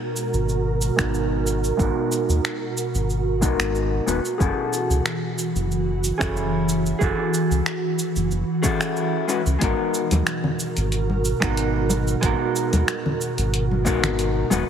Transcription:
Already playing: ambient pad B2 F#4 A#4, hollow-body jazz guitar G#3 B3 D#4 F#4 A#4
0.16 cabasa
0.34 analog synth bass G#1, cabasa
0.49 cabasa
0.82 cabasa
0.96 analog synth bass G#1, hollow-body jazz guitar G#3 B3 D#4 F#4, finger snap, kick, cabasa
1.01 hollow-body jazz guitar A#4
1.14 cabasa
1.47 cabasa
1.64 cabasa
1.77 analog synth bass G#1, hollow-body jazz guitar G#3 B3 D#4 F#4, kick, cabasa
1.82 hollow-body jazz guitar A#4
2.12 cabasa
2.29 analog synth bass D#2, cabasa
2.45 finger snap, cabasa
2.77 cabasa
2.95 analog synth bass G#1, cabasa
3.10 cabasa
3.41 analog synth bass B1, hollow-body jazz guitar G#3 B3 D#4 F#4 A#4, kick, cabasa
3.59 analog synth bass G#1, finger snap, cabasa
3.75 cabasa
4.06 analog synth bass D#1, hollow-body jazz guitar G#3 B3 D#4 F#4 B4, cabasa
4.25 cabasa
4.38 analog synth bass F#1, ambient pad E3, hollow-body jazz guitar C#4 E4 F#4 G#4, kick, cabasa
4.42 hollow-body jazz guitar A4
4.73 cabasa
4.90 analog synth bass C#2, cabasa
5.06 finger snap, cabasa
5.39 cabasa
5.55 analog synth bass F#1, cabasa
5.72 cabasa
6.04 cabasa
6.18 analog synth bass F#1, hollow-body jazz guitar C#4 E4 F#4 G#4, finger snap, kick, cabasa
6.37 cabasa
6.69 cabasa
6.86 cabasa
6.99 analog synth bass F#1, hollow-body jazz guitar C#4 E4 F#4 G#4, kick, cabasa
7.03 hollow-body jazz guitar A4
7.34 cabasa
7.51 analog synth bass C#2, cabasa
7.66 finger snap, cabasa
7.99 cabasa
8.16 analog synth bass F#1, cabasa
8.31 analog synth bass F#1, cabasa
8.62 hollow-body jazz guitar C#4 E4 F#4 G#4 A4, kick, cabasa
8.81 finger snap, cabasa
8.97 cabasa
9.28 hollow-body jazz guitar G#3 C#4 E4 F#4 B4, cabasa
9.46 analog synth bass C#2, cabasa
9.59 analog synth bass G#1, ambient pad B2 F#4 A#4, hollow-body jazz guitar G#3 B3 D#4 F#4, kick, closed hi-hat, cabasa
9.63 hollow-body jazz guitar A#4
9.94 cabasa
10.11 analog synth bass D#2, closed hi-hat, high conga, cabasa
10.27 finger snap, closed hi-hat, cabasa
10.44 low conga
10.60 cabasa
10.77 analog synth bass G#1, closed hi-hat, cabasa
10.92 closed hi-hat, cabasa
11.10 high conga
11.25 cabasa
11.40 analog synth bass G#1, hollow-body jazz guitar G#3 B3 D#4 F#4, finger snap, kick, cabasa
11.45 hollow-body jazz guitar A#4
11.57 closed hi-hat, cabasa
11.89 high conga, cabasa
12.08 cabasa
12.21 analog synth bass G#1, hollow-body jazz guitar G#3 B3 D#4 F#4, kick, closed hi-hat, cabasa
12.26 hollow-body jazz guitar A#4
12.56 cabasa
12.73 analog synth bass D#2, closed hi-hat, high conga, cabasa
12.88 finger snap, closed hi-hat, cabasa
13.06 low conga
13.21 cabasa
13.38 analog synth bass G#1, closed hi-hat, cabasa
13.54 closed hi-hat, cabasa
13.71 high conga
13.85 analog synth bass B1, hollow-body jazz guitar G#3 B3 D#4 F#4 A#4, kick, cabasa
14.03 analog synth bass G#1, finger snap, low conga, cabasa
14.19 closed hi-hat, cabasa
14.50 analog synth bass D#1, hollow-body jazz guitar G#3 B3 D#4 F#4 B4, high conga, cabasa

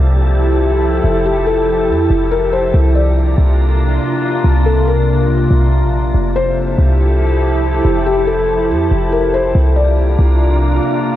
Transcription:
Already playing: 808-style bass C2, ambient pad F3 E4 G4 A4, synth texture G4 E5 A5
1.04 808-style bass F1
1.25 felt piano G4
1.47 felt piano A4
1.89 808-style bass F2
2.10 808-style bass F1
2.31 felt piano A#4
2.53 felt piano C5
2.74 808-style bass C2, ambient pad C3 A#3 D4 F4, synth texture F4 D5 A#5
2.95 felt piano D5
3.38 808-style bass C2
4.44 808-style bass C2
4.66 felt piano A4
4.87 felt piano A#4
5.51 808-style bass C2
5.83 808-style bass A#1
6.14 808-style bass F1, ambient pad F3 E4 G4 A4, synth texture G4 E5 A5
6.36 felt piano C5
6.78 808-style bass C2
7.85 808-style bass F1
8.06 felt piano G4
8.27 felt piano A4
8.70 808-style bass F2
8.91 808-style bass F1
9.12 felt piano A#4
9.34 felt piano C5
9.55 808-style bass C2, ambient pad C3 A#3 D4 F4, synth texture F4 D5 A#5
9.76 felt piano D5
10.19 808-style bass C2

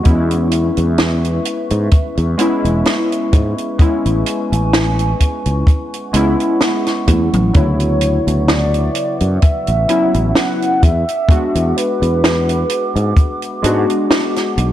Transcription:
Already playing: ambient pad C#6
0.03 fretless electric bass E2, synth keys G#3 B3 C#4 E4, ambient pad B4 E5, kick, closed hi-hat
0.31 closed hi-hat
0.51 closed hi-hat
0.77 fretless electric bass E2, closed hi-hat
0.98 snare, closed hi-hat
1.25 closed hi-hat
1.45 closed hi-hat
1.70 fretless electric bass G#2, closed hi-hat
1.91 kick, closed hi-hat
2.17 fretless electric bass E2, closed hi-hat
2.37 synth keys G#3 B3 C#4 E4, closed hi-hat
2.65 fretless electric bass E1, closed hi-hat
2.85 snare, closed hi-hat
3.12 closed hi-hat
3.33 fretless electric bass G#2, kick, closed hi-hat
3.58 closed hi-hat
3.78 synth keys G#3 B3 C#4 E4, ambient pad G#5, muted fretless electric bass stroke, kick, closed hi-hat
4.06 fretless electric bass A1, closed hi-hat
4.26 closed hi-hat
4.52 fretless electric bass A1, closed hi-hat
4.73 snare, closed hi-hat
4.99 closed hi-hat
5.20 kick, closed hi-hat
5.46 fretless electric bass C#2, closed hi-hat
5.67 ambient pad F#5, kick, closed hi-hat
5.94 closed hi-hat
6.13 fretless electric bass C#2, synth keys G#3 B3 C#4 E4, closed hi-hat
6.40 closed hi-hat
6.61 snare, closed hi-hat
6.86 snare, closed hi-hat
7.08 fretless electric bass E2, kick, closed hi-hat, high tom
7.33 fretless electric bass A1, closed hi-hat, mid tom
7.53 fretless electric bass D2, synth keys C#3 F#3 B3 E4, ambient pad B4 E5, soft synth lead C#5, kick, closed hi-hat
7.80 closed hi-hat
8.01 closed hi-hat
8.27 fretless electric bass D2, closed hi-hat
8.48 soft synth lead D5, snare, closed hi-hat
8.74 closed hi-hat
8.95 closed hi-hat
9.20 fretless electric bass F#2, closed hi-hat
9.42 soft synth lead E5, muted fretless electric bass stroke, kick, closed hi-hat
9.67 fretless electric bass A1, closed hi-hat
9.88 synth keys F#3 B3 C#4 E4, closed hi-hat
10.14 fretless electric bass A1, closed hi-hat
10.35 soft synth lead F#5, snare, closed hi-hat
10.62 closed hi-hat
10.83 fretless electric bass E2, ambient pad G#4 D6, soft synth lead E5, kick, closed hi-hat
11.08 closed hi-hat
11.28 synth keys G#3 B3 D4 F#4, muted fretless electric bass stroke, kick, closed hi-hat
11.55 fretless electric bass E2, closed hi-hat
11.76 soft synth lead B4, closed hi-hat
12.02 fretless electric bass E2, closed hi-hat
12.24 snare, closed hi-hat
12.49 closed hi-hat
12.70 closed hi-hat
12.96 fretless electric bass G#2, closed hi-hat
13.17 kick, closed hi-hat
13.42 closed hi-hat
13.62 fretless electric bass G#2, synth keys G#3 B3 D4 F#4, closed hi-hat
13.90 closed hi-hat
14.11 snare, closed hi-hat
14.36 snare, closed hi-hat
14.58 fretless electric bass B1, closed hi-hat

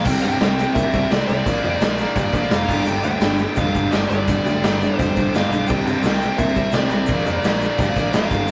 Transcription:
0.05 picked electric bass C2, distorted electric guitar C3 G3, lead electric guitar G5, kick, crash, shaker
0.09 distorted electric guitar C4
0.22 picked electric bass G2, distorted electric guitar C3, lead electric guitar G5, crash
0.27 distorted electric guitar G3 C4
0.40 picked electric bass C2, distorted electric guitar C3 G3, snare, crash, shaker
0.45 distorted electric guitar C4
0.59 distorted electric guitar C3 G3 C4, crash, shaker
0.74 picked electric bass A#2, distorted electric guitar C3, lead electric guitar E5, kick, crash, shaker
0.79 distorted electric guitar G3 C4
0.93 picked electric bass C2, distorted electric guitar C3 G3 C4, kick, crash, shaker
1.11 picked electric bass C2, distorted electric guitar C3 G3 C4, lead electric guitar D5, snare, crash, shaker
1.27 picked electric bass C2, distorted electric guitar C3 G3 C4, lead electric guitar D5, crash, shaker
1.46 picked electric bass A#1, distorted electric guitar A#2 F3 A#3, kick, crash, shaker
1.64 picked electric bass F2, distorted electric guitar A#2 F3 A#3, crash
1.81 picked electric bass A#1, distorted electric guitar A#2 F3 A#3, snare, crash, shaker
1.98 distorted electric guitar A#2 F3 A#3, crash, shaker
2.16 picked electric bass G2, distorted electric guitar A#2 F3 A#3, kick, crash, shaker
2.32 picked electric bass A#1, distorted electric guitar A#2 F3 A#3, kick, crash, shaker
2.42 snare
2.50 picked electric bass F1, distorted electric guitar A#2 F3 A#3, lead electric guitar F5, snare, crash, shaker
2.68 picked electric bass G1, distorted electric guitar G2 D3 G3, kick, crash, shaker
2.85 picked electric bass G1, distorted electric guitar G2 D3 G3, lead electric guitar G5, crash, shaker
3.03 picked electric bass D2, distorted electric guitar G2 D3 G3, lead electric guitar G5, crash, shaker
3.21 picked electric bass G1, distorted electric guitar G2 D3 G3, snare, crash, shaker
3.38 distorted electric guitar G2 D3 G3, crash, shaker
3.55 picked electric bass F2, distorted electric guitar G2 D3, lead electric guitar F5, kick, crash, shaker
3.60 distorted electric guitar G3
3.74 picked electric bass G1, distorted electric guitar G2 D3 G3, kick, crash, shaker
3.85 snare
3.91 picked electric bass G1, distorted electric guitar G2 D3 G3, lead electric guitar D5, snare, crash, shaker
4.09 picked electric bass G1, distorted electric guitar G2 D3 G3, lead electric guitar D5, crash, shaker
4.27 picked electric bass G1, distorted electric guitar G2 D3 G3, kick, crash, shaker
4.45 picked electric bass D2, distorted electric guitar G2 D3 G3, crash, shaker
4.62 picked electric bass G1, distorted electric guitar G2, snare, crash, shaker
4.67 distorted electric guitar D3 G3
4.80 distorted electric guitar G2 D3 G3, crash, shaker
4.97 picked electric bass F2, distorted electric guitar G2 D3, lead electric guitar C5, kick, crash, shaker
5.02 distorted electric guitar G3
5.16 picked electric bass G1, distorted electric guitar G2 D3 G3, kick, crash, shaker
5.32 picked electric bass G1, distorted electric guitar G2, crash, shaker
5.36 distorted electric guitar D3 G3, lead electric guitar F5, snare
5.49 picked electric bass B1, distorted electric guitar G2, shaker
5.54 distorted electric guitar D3 G3, crash
5.67 picked electric bass C2, distorted electric guitar C3 G3 C4, lead electric guitar G5, kick, crash, shaker
5.85 picked electric bass G2, distorted electric guitar C3 G3, lead electric guitar G5, crash, shaker
5.89 distorted electric guitar C4
6.03 picked electric bass C2, distorted electric guitar C3 G3, snare, crash, shaker
6.07 distorted electric guitar C4
6.22 distorted electric guitar C3 G3 C4, crash, shaker
6.38 picked electric bass A#2, distorted electric guitar C3 G3 C4, lead electric guitar E5, kick, crash, shaker
6.56 picked electric bass C2, distorted electric guitar C3 G3 C4, kick, crash, shaker
6.72 picked electric bass C2, lead electric guitar D5, snare, crash, shaker
6.76 distorted electric guitar C3 G3 C4
6.83 snare
6.89 picked electric bass C2, distorted electric guitar C3, lead electric guitar D5, crash, shaker
6.94 distorted electric guitar G3 C4
7.06 picked electric bass A#1, kick, crash, shaker
7.10 distorted electric guitar A#2 F3 A#3
7.26 picked electric bass F2, distorted electric guitar A#2 F3, crash, shaker
7.30 distorted electric guitar A#3
7.43 picked electric bass A#1, distorted electric guitar A#2 F3 A#3, snare, crash, shaker
7.61 distorted electric guitar A#2 F3, crash, shaker
7.65 distorted electric guitar A#3
7.78 picked electric bass G2, distorted electric guitar A#2 F3, kick, crash, shaker
7.82 distorted electric guitar A#3
7.95 picked electric bass A#1, distorted electric guitar A#2 F3 A#3, kick, crash, shaker
8.13 picked electric bass A1, distorted electric guitar A#2 F3, lead electric guitar F5, snare, crash, shaker
8.18 distorted electric guitar A#3
8.30 picked electric bass G1, distorted electric guitar G2 D3, kick, crash, shaker
8.35 distorted electric guitar G3
8.48 shaker

